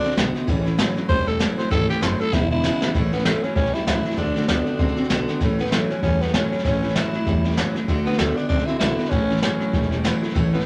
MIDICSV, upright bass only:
0, 0, Header, 1, 3, 480
1, 0, Start_track
1, 0, Key_signature, 3, "major"
1, 0, Tempo, 308642
1, 742, Time_signature, 4, 2, 24, 8
1, 16577, End_track
2, 0, Start_track
2, 0, Title_t, "Upright bass"
2, 0, Program_c, 0, 32
2, 264, Note_on_c, 0, 35, 92
2, 503, Note_off_c, 0, 35, 0
2, 746, Note_on_c, 0, 33, 98
2, 1277, Note_off_c, 0, 33, 0
2, 1702, Note_on_c, 0, 28, 79
2, 2234, Note_off_c, 0, 28, 0
2, 2664, Note_on_c, 0, 32, 90
2, 2901, Note_off_c, 0, 32, 0
2, 3138, Note_on_c, 0, 30, 95
2, 3377, Note_off_c, 0, 30, 0
2, 3621, Note_on_c, 0, 28, 102
2, 4153, Note_off_c, 0, 28, 0
2, 4582, Note_on_c, 0, 33, 94
2, 5113, Note_off_c, 0, 33, 0
2, 5538, Note_on_c, 0, 35, 79
2, 5777, Note_off_c, 0, 35, 0
2, 6015, Note_on_c, 0, 37, 83
2, 6255, Note_off_c, 0, 37, 0
2, 6490, Note_on_c, 0, 38, 99
2, 6689, Note_off_c, 0, 38, 0
2, 6966, Note_on_c, 0, 38, 94
2, 7210, Note_off_c, 0, 38, 0
2, 7449, Note_on_c, 0, 37, 87
2, 7692, Note_off_c, 0, 37, 0
2, 7930, Note_on_c, 0, 35, 84
2, 8172, Note_off_c, 0, 35, 0
2, 8410, Note_on_c, 0, 33, 86
2, 8946, Note_off_c, 0, 33, 0
2, 9373, Note_on_c, 0, 40, 84
2, 9908, Note_off_c, 0, 40, 0
2, 10339, Note_on_c, 0, 33, 91
2, 10871, Note_off_c, 0, 33, 0
2, 11301, Note_on_c, 0, 40, 86
2, 11833, Note_off_c, 0, 40, 0
2, 12259, Note_on_c, 0, 38, 89
2, 12456, Note_off_c, 0, 38, 0
2, 12738, Note_on_c, 0, 38, 90
2, 12978, Note_off_c, 0, 38, 0
2, 13215, Note_on_c, 0, 37, 87
2, 13456, Note_off_c, 0, 37, 0
2, 13689, Note_on_c, 0, 35, 87
2, 13933, Note_off_c, 0, 35, 0
2, 14173, Note_on_c, 0, 33, 93
2, 14709, Note_off_c, 0, 33, 0
2, 15138, Note_on_c, 0, 28, 80
2, 15672, Note_off_c, 0, 28, 0
2, 16099, Note_on_c, 0, 33, 96
2, 16577, Note_off_c, 0, 33, 0
2, 16577, End_track
3, 0, Start_track
3, 0, Title_t, "Muted upright bass strokes"
3, 67, Note_on_c, 9, 29, 81
3, 222, Note_off_c, 9, 29, 0
3, 546, Note_on_c, 9, 29, 80
3, 702, Note_off_c, 9, 29, 0
3, 1501, Note_on_c, 9, 29, 78
3, 1657, Note_off_c, 9, 29, 0
3, 2463, Note_on_c, 9, 29, 82
3, 2619, Note_off_c, 9, 29, 0
3, 4381, Note_on_c, 9, 29, 80
3, 4536, Note_off_c, 9, 29, 0
3, 5337, Note_on_c, 9, 29, 69
3, 5493, Note_off_c, 9, 29, 0
3, 6295, Note_on_c, 9, 29, 76
3, 6451, Note_off_c, 9, 29, 0
3, 7254, Note_on_c, 9, 29, 68
3, 7410, Note_off_c, 9, 29, 0
3, 7735, Note_on_c, 9, 29, 86
3, 7890, Note_off_c, 9, 29, 0
3, 9173, Note_on_c, 9, 29, 68
3, 9329, Note_off_c, 9, 29, 0
3, 10141, Note_on_c, 9, 29, 72
3, 10296, Note_off_c, 9, 29, 0
3, 11108, Note_on_c, 9, 29, 69
3, 11264, Note_off_c, 9, 29, 0
3, 12064, Note_on_c, 9, 29, 82
3, 12219, Note_off_c, 9, 29, 0
3, 13497, Note_on_c, 9, 29, 84
3, 13652, Note_off_c, 9, 29, 0
3, 13966, Note_on_c, 9, 29, 76
3, 14122, Note_off_c, 9, 29, 0
3, 14928, Note_on_c, 9, 29, 80
3, 15083, Note_off_c, 9, 29, 0
3, 15898, Note_on_c, 9, 29, 73
3, 16054, Note_off_c, 9, 29, 0
3, 16577, End_track
0, 0, End_of_file